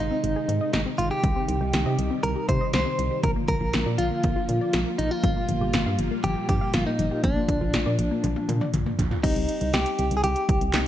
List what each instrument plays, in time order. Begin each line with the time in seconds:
Already playing: string machine C3 D#3 G#3 D#4
0.00 synth arpeggio sound D#3, clean electric guitar D#4
0.11 synth arpeggio sound C4
0.24 fm bass G#1, synth arpeggio sound D#3, closed hi-hat
0.36 synth arpeggio sound G#4
0.48 fm bass G#2, synth arpeggio sound D#3, closed hi-hat
0.61 synth arpeggio sound D#5
0.73 fm bass G#1, synth arpeggio sound D#3, clean electric guitar D#4, snare, closed hi-hat
0.86 synth arpeggio sound C4
0.98 fm bass G#1, synth arpeggio sound D#3, clean electric guitar F4, closed hi-hat
1.11 clean electric guitar G4, synth arpeggio sound G#4
1.23 fm bass C2, synth arpeggio sound D#3, string machine D#3 G3, kick, closed hi-hat
1.36 synth arpeggio sound C4
1.48 fm bass C2, synth arpeggio sound D#3, closed hi-hat
1.61 fm bass C2, synth arpeggio sound G4
1.73 fm bass C2, synth arpeggio sound D#3, snare, closed hi-hat
1.86 fm bass C3, synth arpeggio sound D#5
1.98 fm bass C2, synth arpeggio sound D#3, closed hi-hat
2.11 synth arpeggio sound C4
2.23 fm bass C2, synth arpeggio sound D#3, clean electric guitar A#4, closed hi-hat
2.36 synth arpeggio sound G4
2.49 fm bass C3, synth arpeggio sound D#3, clean electric guitar C5, kick, closed hi-hat
2.61 synth arpeggio sound D#5
2.73 fm bass C2, synth arpeggio sound D#3, clean electric guitar C5, snare, closed hi-hat
2.86 synth arpeggio sound C4
2.98 fm bass C2, synth arpeggio sound D#3, closed hi-hat
3.11 synth arpeggio sound G4
3.23 fm bass A#1, synth arpeggio sound D3, string machine D3 F3 A#3 F4, clean electric guitar A#4, kick, closed hi-hat
3.36 synth arpeggio sound A#3
3.48 fm bass A#1, synth arpeggio sound D3, clean electric guitar A#4, kick, closed hi-hat
3.61 fm bass A#1, synth arpeggio sound F4
3.73 fm bass A#1, synth arpeggio sound D3, snare, closed hi-hat
3.86 fm bass A#2, synth arpeggio sound D5
3.98 fm bass A#1, synth arpeggio sound D3, clean electric guitar F4, closed hi-hat
4.11 synth arpeggio sound A#3
4.23 fm bass A#1, synth arpeggio sound D3, kick, closed hi-hat
4.36 synth arpeggio sound F4
4.49 fm bass A#2, synth arpeggio sound D3, closed hi-hat
4.61 synth arpeggio sound D5
4.73 fm bass A#1, synth arpeggio sound D3, snare, closed hi-hat
4.86 synth arpeggio sound A#3
4.98 fm bass A#1, synth arpeggio sound D3, clean electric guitar D#4, closed hi-hat
5.11 clean electric guitar F4, synth arpeggio sound F4
5.24 fm bass G1, string machine A#2 G3, synth arpeggio sound F3, kick, closed hi-hat
5.36 synth arpeggio sound A#3
5.49 fm bass G1, synth arpeggio sound F3, closed hi-hat
5.61 fm bass G1, synth arpeggio sound G4
5.73 fm bass G1, synth arpeggio sound F3, snare, closed hi-hat
5.86 fm bass G2, synth arpeggio sound F5
5.99 fm bass G1, synth arpeggio sound F3, closed hi-hat
6.11 synth arpeggio sound A#3
6.24 fm bass G1, synth arpeggio sound F3, clean electric guitar G4, closed hi-hat
6.36 synth arpeggio sound G4
6.49 fm bass G2, synth arpeggio sound F3, clean electric guitar G4, kick, closed hi-hat
6.61 synth arpeggio sound F5
6.73 fm bass G1, synth arpeggio sound F3, clean electric guitar F4, snare, closed hi-hat
6.86 synth arpeggio sound A#3, clean electric guitar D#4
6.99 fm bass G1, synth arpeggio sound F3, closed hi-hat
7.11 synth arpeggio sound G4
7.24 fm bass A#1, synth arpeggio sound D3, string machine F3, clean electric guitar D4, kick, closed hi-hat
7.36 synth arpeggio sound A#3
7.49 fm bass A#1, synth arpeggio sound D3, kick, closed hi-hat
7.61 fm bass A#1, synth arpeggio sound F4
7.74 fm bass A#1, synth arpeggio sound D3, snare, closed hi-hat
7.86 fm bass A#2, synth arpeggio sound D5
7.99 fm bass A#1, synth arpeggio sound D3, closed hi-hat
8.11 synth arpeggio sound A#3
8.24 fm bass A#1, synth arpeggio sound D3, closed hi-hat, high tom
8.36 synth arpeggio sound F4, high tom
8.49 fm bass A#2, synth arpeggio sound D3, closed hi-hat, mid tom
8.61 synth arpeggio sound D5, mid tom
8.74 fm bass A#1, synth arpeggio sound D3, closed hi-hat, mid tom
8.86 synth arpeggio sound A#3, mid tom
8.99 fm bass A#1, synth arpeggio sound D3, closed hi-hat, floor tom
9.11 synth arpeggio sound F4, floor tom
9.24 fm bass C2, synth keys G3 C4 D#4 G4, clean electric guitar D#4, kick, closed hi-hat, crash
9.36 fm bass C2, closed hi-hat
9.49 closed hi-hat
9.61 fm bass C2, closed hi-hat
9.73 fm bass C2, clean electric guitar G4, snare, closed hi-hat
9.86 closed hi-hat
9.99 fm bass C2, closed hi-hat
10.11 fm bass C2, closed hi-hat
10.17 clean electric guitar G#4
10.24 fm bass C2, clean electric guitar G4, closed hi-hat
10.36 closed hi-hat
10.49 fm bass C2, kick, closed hi-hat
10.61 fm bass C2, closed hi-hat
10.73 fm bass C2, synth keys G3 C4 D#4 G4, snare, clap, closed hi-hat